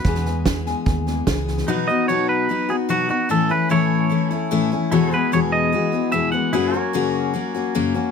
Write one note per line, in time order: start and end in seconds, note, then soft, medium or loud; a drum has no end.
0.00 1.23 B4 medium
0.04 0.73 E2 medium
0.04 0.25 E2 medium
0.04 0.26 B2 medium
0.04 0.26 E3 medium
0.04 0.26 G#3 medium
0.04 0.25 B3 medium
0.04 0.24 G#4 medium
0.04 kick loud
0.04 snare soft
0.15 snare soft
0.25 0.45 E3 soft
0.25 0.47 G#3 soft
0.25 0.46 B3 soft
0.25 0.46 G#4 soft
0.25 snare soft
0.45 0.66 E3 medium
0.45 0.67 G#3 medium
0.45 0.66 B3 medium
0.45 0.65 G#4 medium
0.45 kick medium
0.45 snare loud
0.45 hi-hat pedal medium
0.66 1.08 E3 soft
0.66 1.07 G#3 soft
0.66 1.06 B3 medium
0.66 1.06 G#4 medium
0.66 snare soft
0.86 1.21 D#2 medium
0.86 kick loud
0.86 snare soft
1.07 1.26 E3 soft
1.07 1.27 G#3 soft
1.07 1.27 B3 soft
1.07 1.27 G#4 soft
1.07 snare soft
1.27 1.61 C#2 medium
1.27 1.68 E3 medium
1.27 1.68 G#3 medium
1.27 1.67 B3 medium
1.27 1.69 G#4 medium
1.27 kick medium
1.27 snare loud
1.27 hi-hat pedal medium
1.48 snare soft
1.57 snare soft
1.68 1.88 B2 medium
1.68 1.88 F#3 medium
1.68 1.88 B3 loud
1.68 3.28 D#4 medium
1.68 1.88 D#4 loud
1.68 3.29 F#4 medium
1.68 1.87 F#4 loud
1.68 3.29 B4 medium
1.88 2.08 B3 medium
1.88 2.08 D#4 soft
1.88 2.08 F#4 medium
1.88 2.08 D#5 loud
2.08 2.49 B2 medium
2.08 2.48 F#3 medium
2.08 2.49 B3 medium
2.08 2.49 D#4 medium
2.08 2.50 F#4 medium
2.08 2.29 C#5 loud
2.29 2.70 B4 loud
2.49 2.69 F#3 medium
2.49 2.69 B3 medium
2.49 2.69 D#4 medium
2.49 2.67 F#4 medium
2.68 2.88 B3 soft
2.68 2.89 D#4 soft
2.68 2.89 F#4 medium
2.68 2.75 G#4 medium
2.89 3.09 B2 medium
2.89 3.09 F#3 medium
2.89 3.10 B3 medium
2.89 3.09 D#4 medium
2.89 3.09 F#4 medium
2.89 3.07 F#4 medium
3.09 3.30 B3 soft
3.09 3.30 D#4 medium
3.09 3.29 F#4 medium
3.09 3.31 F#4 medium
3.29 3.50 A2 medium
3.29 3.50 E3 loud
3.29 3.50 A3 medium
3.29 3.49 C#4 loud
3.29 3.48 E4 medium
3.29 3.51 A4 loud
3.49 3.69 A3 soft
3.49 3.70 C#4 medium
3.49 3.70 E4 medium
3.49 3.71 B4 loud
3.69 4.10 A2 medium
3.69 4.09 E3 medium
3.69 4.09 A3 medium
3.69 4.10 C#4 medium
3.69 4.12 E4 medium
3.69 4.90 E4 medium
3.69 4.92 A4 medium
3.69 4.48 C#5 medium
3.74 4.92 C#5 medium
4.10 4.30 E3 medium
4.10 4.31 A3 medium
4.10 4.31 C#4 medium
4.10 4.29 E4 medium
4.31 4.51 A3 medium
4.31 4.51 C#4 medium
4.31 4.51 E4 medium
4.51 4.71 A2 medium
4.51 4.72 E3 loud
4.51 4.72 A3 loud
4.51 4.72 C#4 medium
4.51 4.70 E4 loud
4.72 4.92 A3 medium
4.72 4.92 C#4 medium
4.72 4.92 E4 medium
4.91 5.12 E2 medium
4.91 5.12 B2 loud
4.91 5.12 E3 loud
4.91 5.12 G#3 loud
4.91 5.11 B3 loud
4.91 6.52 E4 medium
4.91 5.10 F#4 loud
4.91 5.12 A4 medium
4.91 5.18 C#5 medium
5.11 5.32 E3 soft
5.11 5.32 G#3 medium
5.11 5.32 B3 medium
5.11 5.32 F#4 medium
5.11 6.52 G#4 medium
5.11 5.33 B4 medium
5.18 6.53 B4 medium
5.32 5.73 E2 medium
5.32 5.73 B2 medium
5.32 5.71 E3 medium
5.32 5.72 G#3 medium
5.32 5.73 B3 loud
5.32 5.74 F#4 medium
5.32 5.39 C#5 medium
5.52 6.12 D#5 loud
5.72 5.93 E3 medium
5.72 5.93 G#3 medium
5.72 5.92 B3 medium
5.72 5.91 F#4 medium
5.92 6.12 E3 soft
5.92 6.12 G#3 soft
5.92 6.13 B3 medium
5.92 6.13 F#4 medium
6.12 6.33 E2 medium
6.12 6.33 B2 medium
6.12 6.33 E3 medium
6.12 6.32 G#3 medium
6.12 6.32 B3 medium
6.12 6.31 F#4 medium
6.12 6.31 E5 loud
6.32 6.53 E3 soft
6.32 6.53 G#3 medium
6.32 6.53 B3 medium
6.32 6.53 F#4 medium
6.32 6.70 F#5 loud
6.53 6.73 F#2 medium
6.53 6.74 C#3 medium
6.53 6.74 F#3 medium
6.53 6.74 A#3 loud
6.53 6.73 C#4 loud
6.53 6.78 E4 medium
6.53 6.72 F#4 loud
6.53 6.79 G#4 medium
6.53 6.80 B4 medium
6.73 6.93 F#3 soft
6.73 6.94 A#3 medium
6.73 6.94 C#4 medium
6.73 6.94 F#4 medium
6.78 8.11 F#4 medium
6.78 8.11 A#4 medium
6.78 8.11 C#5 medium
6.93 7.34 F#2 medium
6.93 7.35 C#3 medium
6.93 7.33 F#3 medium
6.93 7.33 A#3 loud
6.93 7.34 C#4 loud
6.93 7.35 F#4 loud
7.34 7.54 F#3 medium
7.34 7.55 A#3 medium
7.34 7.54 C#4 medium
7.34 7.53 F#4 medium
7.54 7.74 F#3 medium
7.54 7.74 A#3 medium
7.54 7.75 C#4 medium
7.54 7.75 F#4 medium
7.75 7.95 F#2 medium
7.75 7.95 C#3 loud
7.75 7.95 F#3 loud
7.75 7.95 A#3 loud
7.75 7.94 C#4 medium
7.75 7.93 F#4 loud
7.94 8.11 F#3 soft
7.94 8.11 A#3 medium
7.94 8.11 C#4 medium
7.94 8.11 F#4 medium